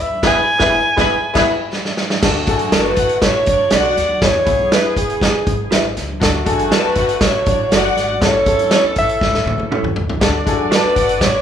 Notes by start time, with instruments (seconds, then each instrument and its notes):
Already playing: upright bass D#2, string section B4 B5
0.01 alto saxophone E5
0.11 high conga
0.23 upright bass E1, saxophone section E3 B3 G#4, upright piano B3 E4 E5, clean electric guitar E4 G#4 B4 E5, string section B4 B5, kick, snare, crash
0.27 upright piano G#4, alto saxophone G#5
0.59 upright bass E1, saxophone section E3 B3 G#4, upright piano B3 E4 E5, clean electric guitar E4 G#4 B4 E5, string section B4 B5, kick, snare
0.67 upright piano G#4
0.96 upright bass E1, saxophone section E3 B3 G#4, upright piano B3 E4 G#4 E5, clean electric guitar E4 G#4 B4 E5, string section B4 B5, kick, snare
1.33 upright bass E1, saxophone section E3 B3 G#4, upright piano B3 E4 G#4 E5, clean electric guitar E4 G#4 B4 E5, string section B4 B5, kick, snare, crash
1.73 snare
1.85 snare
1.97 snare
2.10 snare
2.21 upright bass D2, saxophone section D3 A3 F#4, upright piano D4 F#4 A4, kick, snare, crash, low conga
2.35 muted conga
2.47 upright bass A1, upright piano D4 F#4 A4, string section G#4 G#5, kick, closed hi-hat
2.59 closed hi-hat, high conga
2.72 upright bass F#1, clean electric guitar D4 F#4 A4 D5, string section A4 A5, alto saxophone B4, snare, closed hi-hat
2.84 muted conga
2.97 upright bass A1, string section F#4 F#5, kick, closed hi-hat
3.09 closed hi-hat
3.21 upright bass A1, string section E4 E5, alto saxophone C#5, kick, snare, closed hi-hat, low conga
3.34 muted conga
3.46 upright bass F#1, string section D4 D5, kick, closed hi-hat, high conga
3.71 upright bass B1, clean electric guitar D4 F#4 A4 D5, string section F#4 F#5, snare, closed hi-hat, high conga
3.75 alto saxophone D5
3.84 muted conga
3.97 upright bass D#2, snare, closed hi-hat
4.09 high conga
4.21 upright bass E2, saxophone section E3 B3 G#4, upright piano B3 E4 G#4, alto saxophone C#5, kick, snare, closed hi-hat, muted conga, low conga
4.46 upright bass B1, upright piano B3 E4 G#4, kick, closed hi-hat
4.60 high conga
4.72 clean electric guitar E4 G#4 B4 E5, alto saxophone B4, snare, closed hi-hat, muted conga
4.84 muted upright bass stroke
4.96 upright bass E1, alto saxophone G#4, kick, closed hi-hat
5.10 closed hi-hat
5.21 kick, snare, closed hi-hat, low conga
5.46 upright bass G#1, kick, closed hi-hat, high conga
5.70 upright bass G#1, clean electric guitar E4 G#4 B4 E5, snare, closed hi-hat, muted conga, high conga
5.84 muted conga
5.97 upright bass C#2, snare, closed hi-hat
6.09 high conga
6.19 upright bass D2, saxophone section D3 A3 F#4, upright piano D4 F#4 A4, kick, snare, closed hi-hat, low conga
6.45 upright bass A1, upright piano D4 F#4 A4, string section G#4 G#5, kick, closed hi-hat
6.59 closed hi-hat, high conga
6.71 clean electric guitar D4 F#4 A4 D5, string section A4 A5, alto saxophone B4, snare, closed hi-hat
6.84 muted upright bass stroke, muted conga
6.96 upright bass F#1, string section F#4 F#5, kick, closed hi-hat
7.09 closed hi-hat
7.21 upright bass A1, string section E4 E5, kick, snare, closed hi-hat, muted conga, low conga
7.25 alto saxophone C#5
7.46 upright bass A1, string section D4 D5, kick, closed hi-hat, high conga
7.71 upright bass F#1, clean electric guitar D4 F#4 A4 D5, string section F#4 F#5, snare, closed hi-hat, muted conga, high conga
7.75 alto saxophone D5
7.97 upright bass G#1, snare, closed hi-hat
8.09 high conga
8.19 upright bass A1, saxophone section E3 C#4 A4, upright piano C#4 E4 A4, kick, snare, closed hi-hat, muted conga, low conga
8.25 alto saxophone C#5
8.45 upright bass E2, upright piano C4 E4 A4, kick, closed hi-hat
8.52 upright piano C#4
8.59 closed hi-hat, high conga
8.71 clean electric guitar C#4 E4 A4 C#5, alto saxophone C#5, snare, closed hi-hat, muted conga
8.84 muted upright bass stroke, muted conga
8.96 upright bass A1, alto saxophone E5, kick, closed hi-hat
9.09 closed hi-hat
9.21 kick, snare, low conga
9.33 upright bass A2, snare, muted conga
9.46 upright bass A2, high tom, high conga
9.58 upright bass F#2, high tom
9.71 clean electric guitar C#4 E4 A4 C#5, mid tom, high conga
9.83 upright bass E2, mid tom, muted conga
9.96 upright bass C#2, floor tom
10.10 floor tom, high conga
10.21 upright bass D2, saxophone section A3 F#4 D5, upright piano D4 F#4 A4, kick, snare, closed hi-hat, muted conga, low conga
10.34 muted conga
10.46 upright bass A1, upright piano D4 E4 A4, string section G#4 G#5, kick, closed hi-hat
10.52 upright piano F#4
10.60 high conga
10.71 clean electric guitar D4 F#4 A4 D5, string section A4 A5, alto saxophone B4, snare, closed hi-hat, muted conga
10.84 muted upright bass stroke
10.96 upright bass F#1, string section F#4 F#5, kick, closed hi-hat
11.09 closed hi-hat
11.21 upright bass A1, string section E4 E5, alto saxophone C#5, kick, snare, closed hi-hat, low conga